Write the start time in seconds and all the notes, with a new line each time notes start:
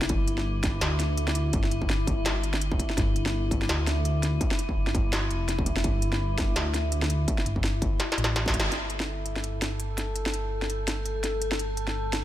Already playing: E4
0.01 snare
0.09 G1, kick, closed hi-hat
0.28 closed hi-hat
0.38 snare
0.63 kick, snare, closed hi-hat
0.81 D2, snare, closed hi-hat
1.00 snare, closed hi-hat
1.18 closed hi-hat
1.28 snare
1.35 closed hi-hat
1.53 G1, kick, closed hi-hat
1.63 snare
1.71 closed hi-hat
1.82 kick
1.90 snare
2.07 G1, kick, closed hi-hat
2.26 snare, closed hi-hat
2.44 closed hi-hat
2.54 snare
2.62 closed hi-hat
2.72 kick
2.79 kick, closed hi-hat
2.90 snare
2.97 G1, kick, snare, closed hi-hat
3.16 closed hi-hat
3.26 snare
3.51 kick, closed hi-hat
3.62 snare
3.69 D2, snare, closed hi-hat
3.87 snare, closed hi-hat
4.05 closed hi-hat
4.23 snare, closed hi-hat
4.41 kick, closed hi-hat
4.51 snare
4.59 closed hi-hat
4.69 kick
4.77 G1
4.87 snare
4.95 kick, closed hi-hat
5.13 snare, closed hi-hat
5.30 F1, closed hi-hat
5.49 snare, closed hi-hat
5.59 kick
5.66 kick, closed hi-hat
5.76 snare
5.84 G1, kick, closed hi-hat
6.02 closed hi-hat
6.12 snare
6.38 kick, snare, closed hi-hat
6.56 D2, snare, closed hi-hat
6.74 snare, closed hi-hat
6.92 closed hi-hat
7.02 snare
7.10 closed hi-hat
7.28 kick, closed hi-hat
7.38 snare
7.46 G1, closed hi-hat
7.56 kick
7.64 snare
7.82 kick, closed hi-hat
8.00 snare, closed hi-hat
8.12 snare
8.18 A1, closed hi-hat
8.24 snare
8.36 snare, closed hi-hat
8.46 kick, snare
8.54 G#1, kick, closed hi-hat
8.60 snare
8.72 G1 G3 D4 A4, snare, closed hi-hat
8.90 closed hi-hat
9.00 snare
9.26 closed hi-hat
9.36 snare
9.44 closed hi-hat
9.62 snare, closed hi-hat
9.80 closed hi-hat
9.98 snare, closed hi-hat
10.16 closed hi-hat
10.26 snare
10.34 closed hi-hat
10.62 snare
10.70 closed hi-hat
10.88 snare, closed hi-hat
11.06 closed hi-hat
11.24 snare, closed hi-hat
11.42 closed hi-hat
11.51 snare
11.59 closed hi-hat
11.77 closed hi-hat
11.87 snare
12.13 snare, closed hi-hat